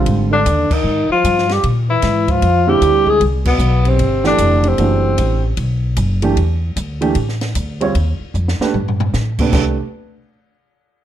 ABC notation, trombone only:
X:1
M:4/4
L:1/8
Q:"Swing" 1/4=152
K:C
V:1 name="Trombone" clef=bass
z D,2 _E,2 F,2 G, | z E,2 F,2 G,2 _A, | z B,,2 C,2 D,2 C,- | C,4 z4 |
z8 | z8 | z8 |]